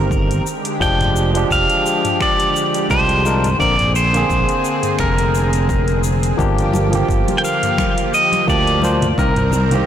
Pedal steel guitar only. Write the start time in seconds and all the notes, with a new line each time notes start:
Already playing: A#4
0.82 G5
1.52 F5
2.22 D5
2.91 C5
3.60 D5
3.96 C5
5.00 A#4
7.38 G5
7.45 F5
8.14 D#5
8.50 D5
9.19 A#4